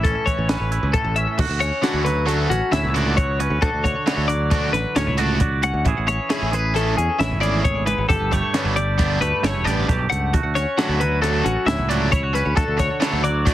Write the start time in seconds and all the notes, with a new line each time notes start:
Already playing: A1 A2 E3 E4
0.03 C#4 A4, kick, snare, closed hi-hat
0.26 E3 C#5, kick, closed hi-hat
0.38 A1
0.49 C#4 B4, snare, closed hi-hat
0.60 A1
0.72 E4, closed hi-hat
0.83 C#2
0.94 A2 A4, kick, closed hi-hat
1.04 A1
1.16 C#4 E5, closed hi-hat
1.38 D2 F#4, muted overdriven electric guitar stroke, kick, crash
1.49 D2
1.59 C#4 C#5, muted overdriven electric guitar stroke, closed hi-hat
1.82 D3 A3 D4 E4 F#4, snare, closed hi-hat
1.94 D2
2.05 F#3 F#4 B4, muted overdriven electric guitar stroke, snare, closed hi-hat
2.26 D3 A3 D4 F#4 A4, closed hi-hat
2.49 A1 C#4 F#4, muted overdriven electric guitar stroke, snare, closed hi-hat
2.72 D2 A2 E4 E5, muted overdriven electric guitar stroke, snare, closed hi-hat
2.84 C#2
2.94 D3 A3 D4 F#4 D5, closed hi-hat
3.17 F#4 C#5, muted overdriven electric guitar stroke, kick, closed hi-hat
3.39 C#4 B4, muted overdriven electric guitar stroke, closed hi-hat
3.50 D2
3.62 D2 D3 F#4 A4, muted overdriven electric guitar stroke, kick, closed hi-hat
3.73 D2
3.84 C#5, muted overdriven electric guitar stroke, kick, closed hi-hat
4.06 D3 A3 D4 E4 F#4, snare, closed hi-hat
4.17 D2
4.28 F#3 F#4 D5, muted overdriven electric guitar stroke, closed hi-hat
4.51 D3 A3 D4 F#4, kick, closed hi-hat
4.72 A1 B4, muted overdriven electric guitar stroke, snare, closed hi-hat
4.95 D2 A2 C#4 C#5, muted overdriven electric guitar stroke, snare, closed hi-hat
5.07 C#2 E4
5.18 D3 A3 D4 F#4 D5, closed hi-hat
5.40 F#4, muted overdriven electric guitar stroke, kick, closed hi-hat
5.62 C#4 F#5, muted overdriven electric guitar stroke, closed hi-hat
5.74 D2
5.85 A1 E3 C#4 E4 G#4, muted overdriven electric guitar stroke, kick, closed hi-hat
5.98 A1
6.07 C#4 C#5, muted overdriven electric guitar stroke, closed hi-hat
6.29 E3 A3 C#4 E4 G#4, snare, closed hi-hat
6.42 A1
6.51 E3 G#4 B4, muted overdriven electric guitar stroke, closed hi-hat
6.74 E3 A3 C#4 E4 A4, snare, closed hi-hat
6.96 E2 C#4 G#4, muted overdriven electric guitar stroke, closed hi-hat
7.19 A1 E2 E4 E5, muted overdriven electric guitar stroke, snare, closed hi-hat
7.31 G#1
7.41 E3 A3 C#4 E4 G#4 D5, closed hi-hat
7.64 A2 C#5, muted overdriven electric guitar stroke, kick, closed hi-hat
7.86 G#2 B4, muted overdriven electric guitar stroke, closed hi-hat
7.98 G#1
8.08 G1 G2 G4 A4, muted overdriven electric guitar stroke, kick, closed hi-hat
8.20 G1
8.32 A3 C#5, muted overdriven electric guitar stroke, kick, closed hi-hat
8.54 D3 G3 B3 C#4 D4, snare, closed hi-hat
8.65 G1 E4
8.76 G3 G4 D5, muted overdriven electric guitar stroke, closed hi-hat
8.98 D3 G3 B3 D4, kick, closed hi-hat
9.21 D2 A3 B4, muted overdriven electric guitar stroke, closed hi-hat
9.43 G1 G2 E4 C#5, muted overdriven electric guitar stroke, snare, closed hi-hat
9.55 E1
9.65 A1 D3 G3 B3 D4 G4 D5, snare, closed hi-hat
9.88 B1 G2 G4, muted overdriven electric guitar stroke, kick, snare, closed hi-hat
10.10 C#2 A3 F#5, muted overdriven electric guitar stroke, closed hi-hat
10.33 D2 F#4, muted overdriven electric guitar stroke, kick, closed hi-hat
10.44 D2
10.55 C#4 C#5, muted overdriven electric guitar stroke, snare, closed hi-hat
10.78 D3 F#3 A3 C#4 D4 F#4, snare, closed hi-hat
10.89 D2 E4
11.00 F#3 F#4 B4, muted overdriven electric guitar stroke, closed hi-hat
11.22 D3 F#3 A3 D4 A4, snare, closed hi-hat
11.45 A1 C#4 F#4, muted overdriven electric guitar stroke, closed hi-hat
11.66 D2 A2 E4 E5, muted overdriven electric guitar stroke, snare, closed hi-hat
11.78 C#2
11.89 D3 F#3 A3 D4 F#4 D5, snare, closed hi-hat
12.12 E4 C#5, muted overdriven electric guitar stroke, kick, closed hi-hat
12.23 F#4
12.34 C#4 B4, muted overdriven electric guitar stroke, snare, closed hi-hat
12.46 D2
12.56 D2 D3 F#4 A4, muted overdriven electric guitar stroke, kick, closed hi-hat
12.68 D2
12.78 C#5, muted overdriven electric guitar stroke, kick, snare, closed hi-hat
13.00 D3 F#3 A3 D4 E4, snare, closed hi-hat
13.13 D2
13.23 F#3 F#4 D5, muted overdriven electric guitar stroke, closed hi-hat
13.46 D3 F#3 A3 D4, kick, closed hi-hat